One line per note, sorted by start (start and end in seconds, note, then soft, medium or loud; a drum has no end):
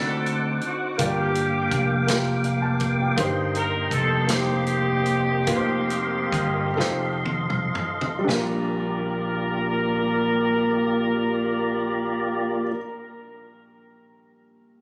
0.00 0.59 D2 medium
0.00 0.96 D3 medium
0.00 0.60 C4 medium
0.00 0.91 C4 medium
0.00 0.91 D#4 medium
0.00 0.97 D#4 medium
0.00 0.60 F#4 medium
0.00 0.92 F#4 medium
0.00 0.61 A4 medium
0.00 0.97 C5 medium
0.00 0.92 D5 medium
0.00 0.97 F#5 medium
0.00 0.96 D6 medium
0.26 closed hi-hat soft
0.61 closed hi-hat soft
0.67 1.01 F#4 medium
0.97 1.68 G1 medium
0.97 2.05 G2 medium
0.97 6.73 A#3 medium
0.97 1.99 A#3 medium
0.97 2.00 F4 medium
0.97 2.01 G4 medium
0.97 3.15 F5 medium
0.97 5.43 G5 medium
0.97 3.15 D6 medium
0.97 kick loud
0.97 closed hi-hat medium
1.01 2.06 A#3 medium
1.01 2.06 D4 medium
1.01 1.82 G4 medium
1.01 2.01 D5 medium
1.35 closed hi-hat soft
1.71 3.14 F1 medium
1.71 kick medium
1.71 closed hi-hat soft
2.07 3.09 A#3 medium
2.07 3.10 F4 medium
2.07 3.10 G4 medium
2.07 3.11 A#4 medium
2.07 snare loud
2.07 closed hi-hat medium
2.44 2.62 F5 medium
2.44 closed hi-hat soft
2.62 2.97 A5 medium
2.80 kick medium
2.80 closed hi-hat soft
3.00 3.34 G5 medium
3.16 3.88 G1 medium
3.16 4.26 G2 medium
3.16 4.20 A#3 medium
3.16 4.21 D#4 medium
3.16 4.21 G4 medium
3.16 8.22 D#5 medium
3.16 5.44 C6 medium
3.16 kick loud
3.16 closed hi-hat medium
3.20 4.22 C5 medium
3.55 3.90 A#4 medium
3.55 closed hi-hat soft
3.91 5.43 F1 medium
3.91 4.30 A4 medium
3.91 kick medium
3.91 closed hi-hat soft
4.27 5.37 A#3 medium
4.27 7.21 A#3 medium
4.27 7.21 C4 medium
4.27 5.37 D#4 medium
4.27 5.38 G4 medium
4.27 7.21 G4 medium
4.27 5.38 C5 medium
4.27 snare medium
4.27 closed hi-hat medium
4.67 closed hi-hat soft
5.06 closed hi-hat soft
5.47 6.28 F1 medium
5.47 6.67 A#3 medium
5.47 6.67 D#4 medium
5.47 6.68 F4 medium
5.47 5.56 B4 medium
5.47 8.24 F5 medium
5.47 8.24 C6 medium
5.47 kick medium
5.47 closed hi-hat medium
5.56 6.71 C5 medium
5.90 closed hi-hat soft
6.32 6.74 G1 medium
6.32 kick medium
6.32 closed hi-hat soft
6.77 7.70 F1 medium
6.77 8.15 D#4 medium
6.77 8.16 F4 medium
6.77 8.14 A4 medium
6.77 8.27 A4 medium
6.77 8.16 C5 medium
6.77 snare soft
7.26 high tom medium
7.50 mid tom medium
7.75 mid tom medium
8.01 floor tom medium
8.19 12.62 G3 medium
8.24 12.70 A#1 medium
8.24 12.71 A#1 medium
8.24 12.68 D4 medium
8.29 12.72 A#3 medium
8.29 12.72 F4 medium
8.29 12.72 F4 soft
8.29 12.72 G4 medium
8.29 12.73 A#4 medium
8.29 12.72 D5 medium
8.29 snare medium
8.34 12.77 A#4 medium